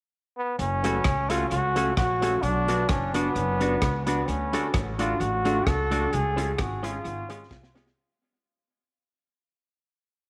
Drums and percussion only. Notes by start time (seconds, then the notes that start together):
0.59 closed hi-hat
0.84 closed hi-hat
1.04 kick, cross-stick, closed hi-hat
1.30 closed hi-hat
1.51 closed hi-hat
1.76 closed hi-hat
1.97 kick, cross-stick, closed hi-hat
2.22 closed hi-hat
2.43 closed hi-hat
2.68 closed hi-hat
2.89 kick, cross-stick, closed hi-hat
3.14 closed hi-hat
3.36 closed hi-hat
3.61 closed hi-hat
3.82 kick, cross-stick, closed hi-hat
4.07 closed hi-hat
4.29 closed hi-hat
4.53 closed hi-hat
4.74 kick, cross-stick, closed hi-hat
4.99 closed hi-hat
5.21 closed hi-hat
5.45 closed hi-hat
5.67 kick, cross-stick, closed hi-hat
5.92 closed hi-hat
6.13 closed hi-hat
6.38 closed hi-hat
6.58 kick, cross-stick, closed hi-hat
6.84 closed hi-hat
7.05 closed hi-hat
7.30 closed hi-hat
7.51 kick, snare
7.63 snare
7.76 snare
7.87 snare